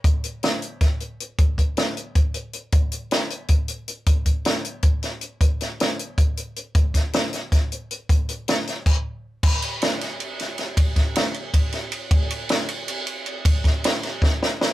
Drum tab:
CC |-------|-------|-------|-------|
RD |-------|-------|-------|-------|
HH |xxxxxxx|xxxxxxx|xxxxxxx|xxxxxxx|
SD |--o-o--|--o----|--o----|--o--o-|
BD |o---o--|oo--o--|o---o--|oo--o--|

CC |-------|-------|----x--|x------|
RD |-------|-------|-------|-xxxxxx|
HH |xxxxxxx|xxxxxxx|xxxx---|-------|
SD |-oo----|-oooo--|--oo---|--oo-oo|
BD |o---o--|oo--o--|o---o--|o------|

CC |-------|-------|-------|
RD |xxxxxxx|xxxxxxx|xxxx---|
HH |-------|-------|-------|
SD |-oo--o-|--o----|-oooooo|
BD |oo--o--|o------|oo--o--|